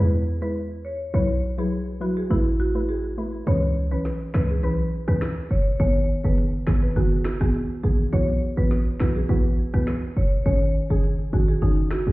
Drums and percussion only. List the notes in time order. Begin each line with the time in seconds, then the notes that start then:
3.47 closed hi-hat
4.05 snare, closed hi-hat
4.34 finger snap, snare
4.63 closed hi-hat
5.08 cross-stick
5.21 finger snap, snare, closed hi-hat
5.80 closed hi-hat
6.38 closed hi-hat
6.67 finger snap, snare
6.96 closed hi-hat
7.25 finger snap, snare
7.41 cross-stick
7.55 closed hi-hat
8.13 closed hi-hat
8.71 snare, closed hi-hat
9.00 finger snap, snare
9.29 closed hi-hat
9.74 cross-stick
9.87 finger snap, snare, closed hi-hat
10.46 closed hi-hat
11.04 closed hi-hat
11.62 closed hi-hat
11.91 finger snap, snare